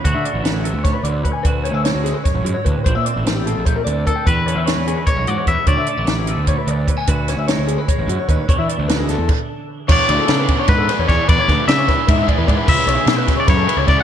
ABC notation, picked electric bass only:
X:1
M:7/8
L:1/16
Q:1/4=150
K:Emix
V:1 name="Picked electric bass" clef=bass
D,, D, z A,,, A,,,3 D,,2 z D,,2 z2 | D,,3 D,,2 D,,2 z2 A,,, F,, z D,, z | _B,,, _B,, z A,,, A,,,3 B,,,2 z D,,2 z2 | E,,3 E,,2 E,,2 z2 B,,, G,, z E,, z |
D,, D, z A,,, A,,,3 D,,2 z D,,2 z2 | D,,3 D,,2 D,,2 z2 A,,, F,, z _E,, z | E,, E, z D,, D,,3 E,, z6 | E,, z D,, z C,2 z2 G,,2 z E,, E,, z |
E,, z D,, z C,2 z2 G,,2 z E,, G,, z | C,, z B,,, z B,,2 z2 F,,2 z C,, C,, z |]